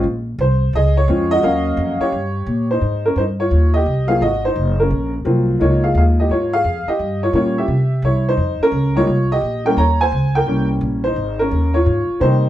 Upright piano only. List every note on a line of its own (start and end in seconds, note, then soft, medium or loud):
0.41 0.75 C5 medium
0.75 1.40 G#4 medium
0.75 0.96 D#5 loud
0.97 1.29 C#5 medium
1.08 1.43 G#3 medium
1.08 1.43 C4 medium
1.08 1.42 C#4 medium
1.08 1.44 F4 medium
1.31 1.97 F#4 medium
1.31 2.03 D#5 loud
1.42 2.12 F#3 medium
1.42 2.12 A#3 medium
1.42 2.13 C#4 medium
1.42 2.13 F5 medium
2.01 2.67 G4 medium
2.01 2.66 C#5 loud
2.71 3.04 D#4 medium
2.71 3.06 C5 medium
3.06 3.17 C#4 medium
3.06 3.16 A#4 medium
3.18 3.24 D#4 medium
3.18 3.23 C5 medium
3.40 3.73 F4 medium
3.40 3.72 C#5 medium
3.74 4.08 G4 medium
3.74 4.06 D#5 medium
4.07 4.19 F#3 medium
4.07 4.19 A#3 medium
4.07 4.20 C4 medium
4.07 4.20 F4 medium
4.07 4.21 G#4 medium
4.07 4.20 F5 loud
4.22 4.44 F#4 medium
4.22 4.43 D#5 medium
4.45 4.78 D#4 medium
4.45 4.80 C5 medium
4.80 5.13 C#4 medium
4.80 5.12 A#4 medium
5.25 5.60 F#3 medium
5.25 5.58 A#3 medium
5.25 5.60 C4 medium
5.25 5.60 F4 medium
5.59 6.57 G#3 medium
5.59 6.57 A#3 medium
5.59 6.58 D#4 medium
5.59 6.31 F4 medium
5.59 5.82 C#5 medium
5.84 5.96 G#4 medium
5.84 5.95 F5 medium
5.98 6.04 G#4 medium
5.98 6.03 F5 medium
6.20 6.31 G4 medium
6.20 6.31 D#5 medium
6.31 6.52 F4 medium
6.31 6.54 C#5 medium
6.53 6.86 G#4 medium
6.53 6.89 F5 loud
6.88 7.21 G4 medium
6.88 7.24 D#5 medium
7.23 7.33 F4 medium
7.23 7.34 C#5 medium
7.32 7.68 G3 medium
7.32 7.69 A#3 medium
7.32 7.69 C#4 soft
7.32 7.69 F4 medium
7.32 7.58 C#5 medium
7.58 8.02 G4 medium
7.58 8.01 E5 medium
8.05 8.26 E4 medium
8.05 8.28 C#5 medium
8.29 8.60 D#4 medium
8.29 8.63 C5 medium
8.63 8.94 C#4 medium
8.63 8.98 A#4 loud
8.95 9.06 G3 medium
8.95 9.07 G#3 medium
8.95 9.07 A#3 medium
8.95 9.07 D#4 medium
8.95 9.29 F4 medium
8.95 9.32 C#5 loud
9.32 9.64 G4 medium
9.32 9.64 D#5 loud
9.65 9.76 E3 medium
9.65 9.76 G3 medium
9.65 9.77 A#3 medium
9.65 9.77 C#4 medium
9.65 9.78 A#4 medium
9.65 9.78 G5 medium
9.78 9.99 C#5 medium
9.78 10.01 A#5 loud
10.01 10.34 C5 medium
10.01 10.36 G#5 loud
10.35 10.68 A#4 medium
10.35 10.68 G5 medium
10.46 11.00 E3 medium
10.46 11.00 G3 medium
10.46 11.00 A#3 medium
10.46 11.01 C#4 medium
11.04 11.38 D#4 medium
11.04 11.40 C5 medium
11.39 11.73 C#4 medium
11.39 11.75 A#4 medium
11.74 12.19 F4 medium
11.74 12.22 C#5 medium
12.20 12.49 D#3 medium
12.20 12.49 G3 medium
12.20 12.49 A#3 medium
12.20 12.49 C4 medium
12.20 12.49 D#4 medium
12.20 12.49 C5 medium